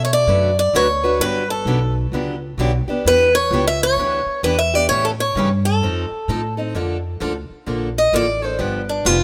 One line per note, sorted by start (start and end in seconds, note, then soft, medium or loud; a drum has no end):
0.00 0.26 B2 medium
0.05 0.12 C#5 medium
0.13 0.58 D5 loud
0.27 0.72 F#2 medium
0.27 0.49 D3 medium
0.27 0.49 F#3 medium
0.27 0.50 A3 medium
0.27 0.50 D4 medium
0.27 0.50 F#4 medium
0.27 0.50 B4 medium
0.59 0.74 D5 medium
0.73 1.19 D2 medium
0.73 0.86 D3 medium
0.73 0.86 F#3 medium
0.73 0.86 A3 medium
0.73 0.86 D4 medium
0.73 0.86 F#4 medium
0.73 0.86 B4 medium
0.73 1.23 C#5 medium
1.04 1.21 A3 soft
1.04 1.21 D4 medium
1.04 1.20 F#4 medium
1.04 1.20 B4 medium
1.20 1.65 G1 medium
1.20 1.42 D3 medium
1.20 1.42 F#3 medium
1.20 1.42 B3 medium
1.20 1.43 D4 medium
1.20 1.43 G4 medium
1.20 1.50 B4 loud
1.50 1.93 A4 medium
1.65 2.11 B1 medium
1.65 1.78 D3 medium
1.65 1.78 F#3 medium
1.65 1.79 B3 medium
1.65 1.79 D4 medium
1.65 1.79 G4 medium
2.12 2.57 C#2 medium
2.12 2.34 D3 medium
2.12 2.35 F#3 medium
2.12 2.35 B3 medium
2.12 2.35 D4 medium
2.12 2.35 G4 medium
2.58 2.85 B1 medium
2.58 2.70 D3 medium
2.58 2.71 F#3 medium
2.58 2.71 B3 medium
2.58 2.71 D4 medium
2.58 2.71 G4 medium
2.87 3.05 B3 soft
2.87 3.05 D4 medium
2.87 3.04 G4 medium
2.87 muted upright bass stroke soft
3.05 3.50 E2 medium
3.05 3.27 E3 medium
3.05 3.27 B3 medium
3.05 3.28 D4 medium
3.05 3.28 G4 medium
3.05 3.33 B4 loud
3.35 3.65 C#5 loud
3.51 3.96 C#2 loud
3.51 3.63 E3 medium
3.51 3.64 B3 medium
3.51 3.64 D4 medium
3.51 3.64 G4 medium
3.67 3.83 E5 loud
3.83 4.40 C#5 loud
3.97 4.24 D2 medium
3.97 4.19 E3 medium
3.97 4.20 B3 medium
3.97 4.20 D4 medium
3.97 4.20 G4 medium
4.26 muted upright bass stroke soft
4.43 4.88 E2 medium
4.43 4.55 E3 medium
4.43 4.55 B3 medium
4.43 4.55 D4 medium
4.43 4.56 G4 medium
4.43 4.58 B4 medium
4.59 4.75 E5 medium
4.74 4.91 B3 soft
4.74 4.90 D4 medium
4.74 4.90 G4 medium
4.74 4.88 D5 medium
4.89 5.34 A2 medium
4.89 5.12 C#3 medium
4.89 5.12 E3 medium
4.89 5.12 A3 medium
4.89 5.12 C#4 medium
4.89 5.12 G4 medium
4.89 5.04 C#5 medium
5.05 5.10 A4 medium
5.20 5.49 C#5 medium
5.35 5.80 G2 loud
5.35 5.48 C#3 medium
5.35 5.48 E3 medium
5.35 5.48 A3 medium
5.35 5.48 C#4 medium
5.35 5.48 G4 medium
5.65 6.53 A4 medium
5.82 6.09 F2 medium
5.82 6.04 F3 medium
5.82 6.04 C4 medium
5.82 6.04 D#4 medium
5.82 6.04 A4 medium
6.11 muted upright bass stroke soft
6.28 6.73 A2 medium
6.28 6.40 F3 medium
6.28 6.40 C4 medium
6.28 6.40 D#4 medium
6.28 6.40 A4 medium
6.57 6.75 C4 soft
6.57 6.74 D#4 soft
6.57 6.74 A4 soft
6.75 7.19 F2 medium
6.75 6.96 D3 medium
6.75 6.96 F3 medium
6.75 6.96 A#3 medium
6.75 6.96 D4 medium
6.75 6.97 A4 medium
7.20 7.48 D2 medium
7.20 7.32 D3 medium
7.20 7.32 F3 medium
7.20 7.32 A#3 medium
7.20 7.32 D4 medium
7.20 7.32 A4 medium
7.50 muted upright bass stroke soft
7.66 8.11 A#1 medium
7.66 7.88 D3 medium
7.66 7.88 F3 medium
7.66 7.88 A#3 medium
7.66 7.88 D4 medium
7.66 7.89 A4 medium
7.98 8.14 D#5 medium
8.13 8.57 A1 medium
8.13 8.24 D3 medium
8.13 8.24 F3 medium
8.13 8.25 A#3 medium
8.13 8.25 D4 medium
8.13 8.25 A4 loud
8.13 8.44 D5 medium
8.42 8.59 A#3 soft
8.42 8.58 D4 soft
8.42 8.58 A4 medium
8.42 8.61 C5 medium
8.59 9.04 G1 medium
8.59 8.80 D3 medium
8.59 8.80 F3 medium
8.59 8.80 B3 medium
8.59 8.81 D4 medium
8.59 8.81 G4 medium
8.59 8.88 B4 medium
8.89 9.06 D4 soft
9.05 9.24 F1 medium
9.05 9.16 D3 medium
9.05 9.17 F3 medium
9.05 9.17 B3 medium
9.05 9.17 D4 medium
9.05 9.24 F4 medium
9.05 9.17 G4 medium